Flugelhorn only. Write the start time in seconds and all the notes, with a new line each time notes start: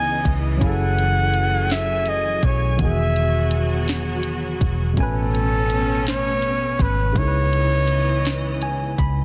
Already playing: G#5
0.64 F#5
1.72 E5
2.09 D#5
2.45 C#5
2.82 E5
4.98 A4
6.08 C#5
6.82 B4
7.18 C#5